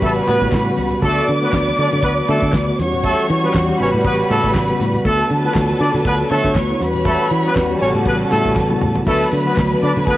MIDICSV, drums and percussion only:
0, 0, Header, 1, 2, 480
1, 0, Start_track
1, 0, Tempo, 502513
1, 981, Time_signature, 4, 2, 24, 8
1, 9718, End_track
2, 0, Start_track
2, 0, Title_t, "Drums"
2, 18, Note_on_c, 9, 62, 34
2, 21, Note_on_c, 9, 36, 122
2, 21, Note_on_c, 9, 42, 86
2, 113, Note_off_c, 9, 62, 0
2, 116, Note_off_c, 9, 36, 0
2, 116, Note_off_c, 9, 42, 0
2, 148, Note_on_c, 9, 42, 45
2, 157, Note_on_c, 9, 62, 30
2, 243, Note_off_c, 9, 42, 0
2, 252, Note_off_c, 9, 62, 0
2, 261, Note_on_c, 9, 63, 61
2, 263, Note_on_c, 9, 42, 44
2, 271, Note_on_c, 9, 39, 67
2, 357, Note_off_c, 9, 63, 0
2, 358, Note_off_c, 9, 42, 0
2, 367, Note_off_c, 9, 39, 0
2, 398, Note_on_c, 9, 36, 85
2, 401, Note_on_c, 9, 42, 44
2, 493, Note_off_c, 9, 36, 0
2, 496, Note_off_c, 9, 42, 0
2, 496, Note_on_c, 9, 39, 102
2, 500, Note_on_c, 9, 36, 114
2, 514, Note_on_c, 9, 38, 101
2, 521, Note_off_c, 9, 39, 0
2, 521, Note_on_c, 9, 39, 80
2, 595, Note_off_c, 9, 36, 0
2, 610, Note_off_c, 9, 38, 0
2, 616, Note_off_c, 9, 39, 0
2, 629, Note_on_c, 9, 42, 35
2, 724, Note_off_c, 9, 42, 0
2, 737, Note_on_c, 9, 63, 80
2, 748, Note_on_c, 9, 46, 82
2, 832, Note_off_c, 9, 63, 0
2, 844, Note_off_c, 9, 46, 0
2, 865, Note_on_c, 9, 42, 52
2, 866, Note_on_c, 9, 64, 77
2, 961, Note_off_c, 9, 42, 0
2, 962, Note_off_c, 9, 64, 0
2, 977, Note_on_c, 9, 42, 73
2, 977, Note_on_c, 9, 62, 39
2, 979, Note_on_c, 9, 36, 112
2, 1073, Note_off_c, 9, 42, 0
2, 1073, Note_off_c, 9, 62, 0
2, 1074, Note_off_c, 9, 36, 0
2, 1215, Note_on_c, 9, 42, 74
2, 1220, Note_on_c, 9, 63, 81
2, 1310, Note_off_c, 9, 42, 0
2, 1316, Note_off_c, 9, 63, 0
2, 1363, Note_on_c, 9, 42, 60
2, 1456, Note_on_c, 9, 39, 94
2, 1458, Note_off_c, 9, 42, 0
2, 1460, Note_on_c, 9, 36, 105
2, 1471, Note_on_c, 9, 38, 121
2, 1477, Note_off_c, 9, 39, 0
2, 1477, Note_on_c, 9, 39, 96
2, 1556, Note_off_c, 9, 36, 0
2, 1566, Note_off_c, 9, 38, 0
2, 1573, Note_off_c, 9, 39, 0
2, 1588, Note_on_c, 9, 42, 35
2, 1595, Note_on_c, 9, 63, 88
2, 1683, Note_off_c, 9, 42, 0
2, 1691, Note_off_c, 9, 63, 0
2, 1692, Note_on_c, 9, 42, 69
2, 1787, Note_off_c, 9, 42, 0
2, 1827, Note_on_c, 9, 42, 49
2, 1836, Note_on_c, 9, 64, 72
2, 1923, Note_off_c, 9, 42, 0
2, 1930, Note_on_c, 9, 42, 80
2, 1932, Note_off_c, 9, 64, 0
2, 1936, Note_on_c, 9, 36, 113
2, 2026, Note_off_c, 9, 42, 0
2, 2031, Note_off_c, 9, 36, 0
2, 2079, Note_on_c, 9, 62, 37
2, 2174, Note_off_c, 9, 62, 0
2, 2174, Note_on_c, 9, 42, 46
2, 2186, Note_on_c, 9, 63, 51
2, 2188, Note_on_c, 9, 39, 69
2, 2270, Note_off_c, 9, 42, 0
2, 2282, Note_off_c, 9, 63, 0
2, 2283, Note_off_c, 9, 39, 0
2, 2312, Note_on_c, 9, 42, 45
2, 2314, Note_on_c, 9, 36, 92
2, 2408, Note_off_c, 9, 42, 0
2, 2409, Note_off_c, 9, 36, 0
2, 2410, Note_on_c, 9, 39, 111
2, 2417, Note_on_c, 9, 36, 125
2, 2426, Note_on_c, 9, 38, 113
2, 2426, Note_on_c, 9, 62, 39
2, 2432, Note_off_c, 9, 39, 0
2, 2432, Note_on_c, 9, 39, 83
2, 2512, Note_off_c, 9, 36, 0
2, 2521, Note_off_c, 9, 38, 0
2, 2522, Note_off_c, 9, 62, 0
2, 2528, Note_off_c, 9, 39, 0
2, 2563, Note_on_c, 9, 62, 34
2, 2659, Note_off_c, 9, 62, 0
2, 2668, Note_on_c, 9, 38, 37
2, 2668, Note_on_c, 9, 42, 84
2, 2668, Note_on_c, 9, 63, 72
2, 2763, Note_off_c, 9, 42, 0
2, 2763, Note_off_c, 9, 63, 0
2, 2764, Note_off_c, 9, 38, 0
2, 2786, Note_on_c, 9, 42, 57
2, 2802, Note_on_c, 9, 64, 71
2, 2882, Note_off_c, 9, 42, 0
2, 2897, Note_off_c, 9, 64, 0
2, 2897, Note_on_c, 9, 42, 76
2, 2901, Note_on_c, 9, 36, 102
2, 2992, Note_off_c, 9, 42, 0
2, 2996, Note_off_c, 9, 36, 0
2, 3037, Note_on_c, 9, 62, 33
2, 3039, Note_on_c, 9, 42, 35
2, 3133, Note_off_c, 9, 62, 0
2, 3135, Note_off_c, 9, 42, 0
2, 3136, Note_on_c, 9, 42, 76
2, 3146, Note_on_c, 9, 63, 82
2, 3232, Note_off_c, 9, 42, 0
2, 3241, Note_off_c, 9, 63, 0
2, 3290, Note_on_c, 9, 42, 57
2, 3376, Note_on_c, 9, 39, 108
2, 3385, Note_off_c, 9, 42, 0
2, 3385, Note_on_c, 9, 36, 95
2, 3395, Note_on_c, 9, 38, 119
2, 3402, Note_off_c, 9, 39, 0
2, 3402, Note_on_c, 9, 39, 101
2, 3480, Note_off_c, 9, 36, 0
2, 3491, Note_off_c, 9, 38, 0
2, 3497, Note_off_c, 9, 39, 0
2, 3518, Note_on_c, 9, 42, 36
2, 3518, Note_on_c, 9, 62, 40
2, 3518, Note_on_c, 9, 63, 82
2, 3614, Note_off_c, 9, 42, 0
2, 3614, Note_off_c, 9, 62, 0
2, 3614, Note_off_c, 9, 63, 0
2, 3624, Note_on_c, 9, 42, 73
2, 3719, Note_off_c, 9, 42, 0
2, 3758, Note_on_c, 9, 64, 73
2, 3760, Note_on_c, 9, 42, 46
2, 3853, Note_off_c, 9, 64, 0
2, 3856, Note_off_c, 9, 42, 0
2, 3864, Note_on_c, 9, 36, 121
2, 3864, Note_on_c, 9, 42, 76
2, 3866, Note_on_c, 9, 62, 36
2, 3959, Note_off_c, 9, 36, 0
2, 3959, Note_off_c, 9, 42, 0
2, 3961, Note_off_c, 9, 62, 0
2, 3995, Note_on_c, 9, 42, 41
2, 4006, Note_on_c, 9, 62, 34
2, 4091, Note_off_c, 9, 42, 0
2, 4102, Note_off_c, 9, 62, 0
2, 4104, Note_on_c, 9, 42, 46
2, 4107, Note_on_c, 9, 63, 55
2, 4117, Note_on_c, 9, 39, 74
2, 4199, Note_off_c, 9, 42, 0
2, 4203, Note_off_c, 9, 63, 0
2, 4213, Note_off_c, 9, 39, 0
2, 4240, Note_on_c, 9, 36, 81
2, 4243, Note_on_c, 9, 42, 45
2, 4336, Note_off_c, 9, 36, 0
2, 4338, Note_off_c, 9, 42, 0
2, 4342, Note_on_c, 9, 36, 108
2, 4342, Note_on_c, 9, 39, 100
2, 4356, Note_on_c, 9, 38, 105
2, 4362, Note_off_c, 9, 39, 0
2, 4362, Note_on_c, 9, 39, 84
2, 4437, Note_off_c, 9, 36, 0
2, 4451, Note_off_c, 9, 38, 0
2, 4458, Note_off_c, 9, 39, 0
2, 4474, Note_on_c, 9, 42, 40
2, 4569, Note_off_c, 9, 42, 0
2, 4580, Note_on_c, 9, 63, 71
2, 4592, Note_on_c, 9, 38, 37
2, 4592, Note_on_c, 9, 42, 80
2, 4676, Note_off_c, 9, 63, 0
2, 4688, Note_off_c, 9, 38, 0
2, 4688, Note_off_c, 9, 42, 0
2, 4710, Note_on_c, 9, 42, 57
2, 4715, Note_on_c, 9, 64, 76
2, 4806, Note_off_c, 9, 42, 0
2, 4810, Note_off_c, 9, 64, 0
2, 4824, Note_on_c, 9, 36, 106
2, 4825, Note_on_c, 9, 42, 70
2, 4920, Note_off_c, 9, 36, 0
2, 4920, Note_off_c, 9, 42, 0
2, 4952, Note_on_c, 9, 62, 32
2, 4959, Note_on_c, 9, 42, 38
2, 5048, Note_off_c, 9, 62, 0
2, 5055, Note_off_c, 9, 42, 0
2, 5061, Note_on_c, 9, 42, 73
2, 5061, Note_on_c, 9, 63, 77
2, 5156, Note_off_c, 9, 42, 0
2, 5156, Note_off_c, 9, 63, 0
2, 5210, Note_on_c, 9, 42, 52
2, 5294, Note_on_c, 9, 39, 108
2, 5304, Note_on_c, 9, 36, 104
2, 5306, Note_off_c, 9, 42, 0
2, 5313, Note_on_c, 9, 38, 106
2, 5320, Note_off_c, 9, 39, 0
2, 5320, Note_on_c, 9, 39, 102
2, 5400, Note_off_c, 9, 36, 0
2, 5408, Note_off_c, 9, 38, 0
2, 5415, Note_off_c, 9, 39, 0
2, 5439, Note_on_c, 9, 63, 79
2, 5535, Note_off_c, 9, 63, 0
2, 5538, Note_on_c, 9, 42, 77
2, 5633, Note_off_c, 9, 42, 0
2, 5677, Note_on_c, 9, 64, 80
2, 5678, Note_on_c, 9, 42, 44
2, 5773, Note_off_c, 9, 64, 0
2, 5774, Note_off_c, 9, 42, 0
2, 5780, Note_on_c, 9, 42, 91
2, 5781, Note_on_c, 9, 36, 119
2, 5876, Note_off_c, 9, 36, 0
2, 5876, Note_off_c, 9, 42, 0
2, 5912, Note_on_c, 9, 42, 41
2, 5922, Note_on_c, 9, 62, 33
2, 6008, Note_off_c, 9, 42, 0
2, 6018, Note_off_c, 9, 62, 0
2, 6019, Note_on_c, 9, 42, 49
2, 6026, Note_on_c, 9, 39, 66
2, 6028, Note_on_c, 9, 63, 57
2, 6115, Note_off_c, 9, 42, 0
2, 6122, Note_off_c, 9, 39, 0
2, 6124, Note_off_c, 9, 63, 0
2, 6156, Note_on_c, 9, 36, 91
2, 6157, Note_on_c, 9, 42, 45
2, 6251, Note_off_c, 9, 36, 0
2, 6252, Note_off_c, 9, 42, 0
2, 6254, Note_on_c, 9, 39, 106
2, 6257, Note_on_c, 9, 36, 110
2, 6268, Note_on_c, 9, 38, 109
2, 6275, Note_off_c, 9, 39, 0
2, 6275, Note_on_c, 9, 39, 91
2, 6352, Note_off_c, 9, 36, 0
2, 6363, Note_off_c, 9, 38, 0
2, 6370, Note_off_c, 9, 39, 0
2, 6384, Note_on_c, 9, 42, 39
2, 6401, Note_on_c, 9, 62, 38
2, 6480, Note_off_c, 9, 42, 0
2, 6496, Note_off_c, 9, 62, 0
2, 6500, Note_on_c, 9, 63, 76
2, 6509, Note_on_c, 9, 38, 44
2, 6509, Note_on_c, 9, 42, 90
2, 6595, Note_off_c, 9, 63, 0
2, 6604, Note_off_c, 9, 42, 0
2, 6605, Note_off_c, 9, 38, 0
2, 6620, Note_on_c, 9, 42, 54
2, 6632, Note_on_c, 9, 64, 78
2, 6715, Note_off_c, 9, 42, 0
2, 6727, Note_off_c, 9, 64, 0
2, 6733, Note_on_c, 9, 42, 71
2, 6735, Note_on_c, 9, 62, 41
2, 6735, Note_on_c, 9, 64, 87
2, 6737, Note_on_c, 9, 36, 111
2, 6828, Note_off_c, 9, 42, 0
2, 6830, Note_off_c, 9, 62, 0
2, 6830, Note_off_c, 9, 64, 0
2, 6833, Note_off_c, 9, 36, 0
2, 6873, Note_on_c, 9, 62, 38
2, 6968, Note_off_c, 9, 62, 0
2, 6977, Note_on_c, 9, 42, 76
2, 6977, Note_on_c, 9, 63, 79
2, 7072, Note_off_c, 9, 42, 0
2, 7072, Note_off_c, 9, 63, 0
2, 7126, Note_on_c, 9, 42, 48
2, 7212, Note_on_c, 9, 39, 104
2, 7221, Note_off_c, 9, 42, 0
2, 7221, Note_on_c, 9, 36, 105
2, 7231, Note_on_c, 9, 38, 123
2, 7237, Note_off_c, 9, 39, 0
2, 7237, Note_on_c, 9, 39, 107
2, 7316, Note_off_c, 9, 36, 0
2, 7326, Note_off_c, 9, 38, 0
2, 7333, Note_off_c, 9, 39, 0
2, 7352, Note_on_c, 9, 62, 38
2, 7352, Note_on_c, 9, 63, 83
2, 7448, Note_off_c, 9, 62, 0
2, 7448, Note_off_c, 9, 63, 0
2, 7456, Note_on_c, 9, 46, 79
2, 7551, Note_off_c, 9, 46, 0
2, 7590, Note_on_c, 9, 64, 84
2, 7595, Note_on_c, 9, 42, 45
2, 7685, Note_off_c, 9, 64, 0
2, 7690, Note_off_c, 9, 42, 0
2, 7693, Note_on_c, 9, 42, 87
2, 7695, Note_on_c, 9, 62, 37
2, 7698, Note_on_c, 9, 36, 118
2, 7789, Note_off_c, 9, 42, 0
2, 7791, Note_off_c, 9, 62, 0
2, 7793, Note_off_c, 9, 36, 0
2, 7827, Note_on_c, 9, 42, 39
2, 7922, Note_off_c, 9, 42, 0
2, 7937, Note_on_c, 9, 42, 47
2, 7939, Note_on_c, 9, 63, 61
2, 7942, Note_on_c, 9, 39, 70
2, 8032, Note_off_c, 9, 42, 0
2, 8035, Note_off_c, 9, 63, 0
2, 8037, Note_off_c, 9, 39, 0
2, 8073, Note_on_c, 9, 42, 46
2, 8074, Note_on_c, 9, 36, 82
2, 8169, Note_off_c, 9, 42, 0
2, 8170, Note_off_c, 9, 36, 0
2, 8173, Note_on_c, 9, 39, 106
2, 8173, Note_on_c, 9, 62, 38
2, 8177, Note_on_c, 9, 36, 106
2, 8188, Note_on_c, 9, 38, 57
2, 8268, Note_off_c, 9, 62, 0
2, 8269, Note_off_c, 9, 39, 0
2, 8273, Note_off_c, 9, 36, 0
2, 8283, Note_off_c, 9, 38, 0
2, 8308, Note_on_c, 9, 62, 35
2, 8314, Note_on_c, 9, 48, 62
2, 8403, Note_off_c, 9, 62, 0
2, 8409, Note_off_c, 9, 48, 0
2, 8411, Note_on_c, 9, 63, 68
2, 8419, Note_on_c, 9, 45, 100
2, 8507, Note_off_c, 9, 63, 0
2, 8515, Note_off_c, 9, 45, 0
2, 8546, Note_on_c, 9, 64, 78
2, 8553, Note_on_c, 9, 43, 104
2, 8642, Note_off_c, 9, 64, 0
2, 8649, Note_off_c, 9, 43, 0
2, 8654, Note_on_c, 9, 62, 40
2, 8661, Note_on_c, 9, 36, 105
2, 8662, Note_on_c, 9, 49, 103
2, 8750, Note_off_c, 9, 62, 0
2, 8757, Note_off_c, 9, 36, 0
2, 8757, Note_off_c, 9, 49, 0
2, 8797, Note_on_c, 9, 42, 39
2, 8893, Note_off_c, 9, 42, 0
2, 8898, Note_on_c, 9, 63, 79
2, 8899, Note_on_c, 9, 42, 77
2, 8994, Note_off_c, 9, 63, 0
2, 8995, Note_off_c, 9, 42, 0
2, 9049, Note_on_c, 9, 42, 57
2, 9131, Note_on_c, 9, 39, 97
2, 9144, Note_on_c, 9, 36, 115
2, 9145, Note_off_c, 9, 42, 0
2, 9156, Note_on_c, 9, 38, 112
2, 9163, Note_off_c, 9, 39, 0
2, 9163, Note_on_c, 9, 39, 113
2, 9240, Note_off_c, 9, 36, 0
2, 9252, Note_off_c, 9, 38, 0
2, 9258, Note_off_c, 9, 39, 0
2, 9271, Note_on_c, 9, 62, 41
2, 9271, Note_on_c, 9, 63, 89
2, 9367, Note_off_c, 9, 62, 0
2, 9367, Note_off_c, 9, 63, 0
2, 9378, Note_on_c, 9, 42, 74
2, 9473, Note_off_c, 9, 42, 0
2, 9516, Note_on_c, 9, 64, 84
2, 9517, Note_on_c, 9, 42, 48
2, 9611, Note_off_c, 9, 64, 0
2, 9612, Note_off_c, 9, 42, 0
2, 9619, Note_on_c, 9, 36, 116
2, 9619, Note_on_c, 9, 42, 86
2, 9619, Note_on_c, 9, 62, 32
2, 9714, Note_off_c, 9, 42, 0
2, 9714, Note_off_c, 9, 62, 0
2, 9715, Note_off_c, 9, 36, 0
2, 9718, End_track
0, 0, End_of_file